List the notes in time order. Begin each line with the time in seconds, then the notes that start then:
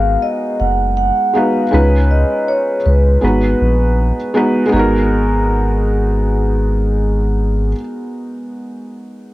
Already playing: G#1 G#3 B3 D#4 F#4 A#4 F5
0.22 D#5
0.60 F#1 F#5
0.97 F#5
1.33 G#3 B3 D#4 F#4 B4 F5
1.71 C#2 G#3 C#4 D#4 F4 B4
2.11 D#5
2.48 C#5
2.86 C#2 B4
3.21 G#1 G#3 B3 D#4 F#4 B4
3.61 A#1
4.34 G#3 B3 D#4 F#4 B4
4.66 G#3 B3
4.72 G#1 D#4 F#4 G#4
4.79 A#4